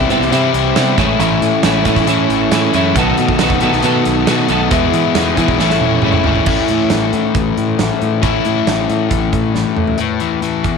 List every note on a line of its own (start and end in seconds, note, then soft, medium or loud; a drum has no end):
0.00 0.10 E4 medium
0.00 0.97 C5 medium
0.00 0.95 E5 medium
0.00 0.97 C6 medium
0.09 0.30 C3 medium
0.09 0.19 C3 loud
0.09 0.30 E3 medium
0.09 0.31 G3 medium
0.09 0.35 B3 medium
0.09 0.30 C4 medium
0.09 0.32 E4 medium
0.09 closed hi-hat medium
0.20 0.29 C2 medium
0.20 snare soft
0.31 0.75 C3 medium
0.31 0.50 C3 medium
0.31 0.75 E3 medium
0.31 0.75 G3 loud
0.31 0.75 C4 medium
0.31 0.76 E4 loud
0.31 closed hi-hat medium
0.53 0.72 C2 medium
0.53 closed hi-hat medium
0.76 0.94 C3 medium
0.76 0.96 C3 medium
0.76 0.96 E3 medium
0.76 0.97 G3 medium
0.76 0.97 B3 medium
0.76 0.97 C4 medium
0.76 0.97 E4 medium
0.76 snare medium
0.76 closed hi-hat medium
0.97 1.16 A1 medium
0.97 1.18 A2 medium
0.97 1.19 E3 medium
0.97 1.22 G#3 loud
0.97 1.20 A3 medium
0.97 1.19 C#4 loud
0.97 1.20 E4 loud
0.97 2.94 A4 medium
0.97 2.94 G#5 medium
0.97 2.94 C#6 medium
0.97 kick loud
0.97 closed hi-hat medium
1.19 1.38 A1 loud
1.19 1.62 A2 loud
1.19 1.63 E3 medium
1.19 1.64 A3 loud
1.19 1.63 C#4 loud
1.19 1.64 E4 medium
1.19 closed hi-hat medium
1.41 1.51 A2 medium
1.41 closed hi-hat medium
1.63 1.82 A1 medium
1.63 1.85 A2 medium
1.63 1.84 E3 medium
1.63 1.85 G#3 medium
1.63 1.86 A3 medium
1.63 1.85 C#4 medium
1.63 1.86 E4 medium
1.63 snare loud
1.63 closed hi-hat medium
1.85 1.95 A2 medium
1.85 2.05 A2 medium
1.85 2.06 E3 medium
1.85 2.10 G#3 medium
1.85 2.06 A3 medium
1.85 2.06 C#4 medium
1.85 2.06 E4 medium
1.85 kick medium
1.85 closed hi-hat medium
1.96 2.06 A1 medium
1.96 kick medium
1.96 snare soft
2.06 2.50 A2 medium
2.06 2.26 A2 medium
2.06 2.51 E3 loud
2.06 2.51 A3 loud
2.06 2.51 C#4 loud
2.06 2.52 E4 loud
2.06 closed hi-hat loud
2.29 2.48 A1 medium
2.29 closed hi-hat medium
2.51 2.70 A2 medium
2.51 2.72 A2 medium
2.51 2.72 E3 medium
2.51 2.73 G#3 medium
2.51 2.73 A3 medium
2.51 2.73 C#4 medium
2.51 2.73 E4 medium
2.51 snare loud
2.51 closed hi-hat medium
2.73 2.92 F#2 medium
2.73 2.94 A2 medium
2.73 2.94 E3 medium
2.73 2.95 G#3 medium
2.73 2.95 A3 medium
2.73 2.95 C#4 medium
2.73 2.95 E4 medium
2.73 closed hi-hat medium
2.95 3.14 B1 loud
2.95 3.38 B2 medium
2.95 3.39 D#3 loud
2.95 3.39 F#3 medium
2.95 3.39 A3 loud
2.95 3.40 B3 loud
2.95 3.40 D#4 loud
2.95 3.40 F#4 loud
2.95 3.41 A4 loud
2.95 4.71 B4 medium
2.95 4.71 A5 medium
2.95 5.58 D#6 medium
2.95 kick loud
2.95 closed hi-hat loud
3.18 3.28 B2 medium
3.18 closed hi-hat medium
3.28 kick medium
3.39 3.58 B1 medium
3.39 3.59 B2 medium
3.39 3.60 D#3 medium
3.39 3.61 F#3 medium
3.39 3.60 A3 medium
3.39 3.60 B3 medium
3.39 3.62 D#4 medium
3.39 3.61 F#4 medium
3.39 3.62 A4 medium
3.39 snare loud
3.39 closed hi-hat medium
3.50 kick medium
3.60 3.81 B2 medium
3.60 3.71 B2 medium
3.60 3.82 D#3 medium
3.60 3.83 F#3 medium
3.60 3.82 A3 medium
3.60 3.83 B3 medium
3.60 3.84 D#4 medium
3.60 3.83 F#4 medium
3.60 3.84 A4 medium
3.60 closed hi-hat medium
3.73 3.82 B1 medium
3.73 snare soft
3.83 4.26 B2 loud
3.83 4.02 B2 loud
3.83 4.26 D#3 loud
3.83 4.27 F#3 loud
3.83 4.27 A3 loud
3.83 4.27 B3 loud
3.83 4.28 D#4 loud
3.83 4.27 F#4 loud
3.83 4.28 A4 loud
3.83 closed hi-hat medium
4.05 4.24 B1 medium
4.05 closed hi-hat medium
4.27 4.45 B2 medium
4.27 4.47 B2 medium
4.27 4.48 D#3 medium
4.27 4.48 F#3 medium
4.27 4.48 A3 medium
4.27 4.48 B3 medium
4.27 4.49 D#4 medium
4.27 4.49 F#4 medium
4.27 4.49 A4 medium
4.27 snare loud
4.27 closed hi-hat medium
4.48 4.68 B1 medium
4.48 4.70 B2 medium
4.48 4.70 D#3 medium
4.48 4.70 F#3 medium
4.48 4.70 A3 medium
4.48 4.70 B3 medium
4.48 4.71 D#4 medium
4.48 4.70 F#4 medium
4.48 4.71 A4 loud
4.48 closed hi-hat medium
4.71 5.14 E2 loud
4.71 4.90 E2 loud
4.71 5.15 B2 medium
4.71 5.15 E3 loud
4.71 5.15 G#3 medium
4.71 5.15 B3 medium
4.71 5.16 E4 loud
4.71 5.59 G#4 medium
4.71 5.59 E5 medium
4.71 kick loud
4.71 closed hi-hat medium
4.92 5.02 E3 medium
4.92 closed hi-hat medium
5.15 5.33 E2 medium
5.15 5.36 E2 medium
5.15 5.36 B2 medium
5.15 5.36 E3 medium
5.15 5.37 G#3 medium
5.15 5.37 B3 medium
5.15 5.38 D#4 loud
5.15 5.37 E4 medium
5.15 snare loud
5.15 closed hi-hat medium
5.37 5.58 E2 medium
5.37 5.58 B2 medium
5.37 5.58 E3 medium
5.37 5.47 E3 medium
5.37 5.58 G#3 medium
5.37 5.58 B3 medium
5.37 5.59 D#4 medium
5.37 5.58 E4 medium
5.37 kick medium
5.37 closed hi-hat medium
5.48 5.57 B1 medium
5.48 kick medium
5.58 5.77 A1 loud
5.58 6.02 A2 medium
5.58 6.03 E3 medium
5.58 6.04 A3 medium
5.58 6.04 C#4 loud
5.58 6.04 E4 loud
5.58 6.47 A4 medium
5.58 6.48 G#5 medium
5.58 6.48 C#6 medium
5.58 snare medium
5.70 snare medium
5.81 6.01 E1 medium
5.81 high tom medium
5.91 high tom medium
6.02 6.23 F#1 medium
6.02 6.24 A2 medium
6.02 6.25 E3 medium
6.02 6.25 G#3 medium
6.02 6.26 A3 medium
6.02 6.26 C#4 medium
6.02 6.26 E4 medium
6.02 mid tom medium
6.12 mid tom medium
6.24 6.45 G#1 medium
6.24 6.46 A2 medium
6.24 6.46 E3 medium
6.24 6.46 G#3 medium
6.24 6.47 A3 medium
6.24 6.47 C#4 medium
6.24 6.47 E4 medium
6.24 floor tom medium
6.35 floor tom medium
6.46 6.56 A1 medium
6.46 8.21 A2 medium
6.46 8.22 E3 medium
6.46 8.22 A3 medium
6.46 8.23 C#4 medium
6.46 8.24 E4 medium
6.46 kick loud
6.46 crash medium
6.68 6.88 A2 medium
6.68 closed hi-hat medium
6.90 7.09 A1 medium
6.90 snare loud
6.90 closed hi-hat medium
7.13 7.32 A2 medium
7.13 closed hi-hat medium
7.35 7.53 A1 medium
7.35 kick loud
7.35 closed hi-hat medium
7.57 7.76 A2 medium
7.57 closed hi-hat medium
7.79 7.89 A1 medium
7.79 snare loud
7.79 closed hi-hat medium
8.02 8.20 A2 medium
8.02 closed hi-hat medium
8.22 8.32 A1 medium
8.22 9.97 A2 medium
8.22 9.98 E3 medium
8.22 9.98 A3 medium
8.22 9.98 C#4 medium
8.22 9.99 E4 loud
8.22 kick loud
8.22 closed hi-hat medium
8.45 8.64 A2 medium
8.45 closed hi-hat medium
8.67 8.86 A1 medium
8.67 snare loud
8.67 closed hi-hat medium
8.90 9.08 A2 medium
8.90 closed hi-hat medium
9.11 9.29 A1 loud
9.11 kick medium
9.11 closed hi-hat medium
9.33 9.51 A2 medium
9.33 kick medium
9.33 closed hi-hat medium
9.55 9.64 A1 medium
9.55 snare soft
9.76 9.96 A2 medium
9.76 mid tom medium
9.87 floor tom medium
9.98 10.65 A2 medium
9.98 10.64 B4 soft
9.98 10.65 A5 soft
9.98 10.78 C#6 medium
9.98 closed hi-hat medium
10.20 10.42 E3 soft
10.20 closed hi-hat soft
10.42 10.78 E3 medium
10.42 closed hi-hat medium
10.64 10.78 E2 soft
10.64 10.78 G#4 medium
10.64 10.78 E5 soft
10.64 kick medium
10.64 closed hi-hat soft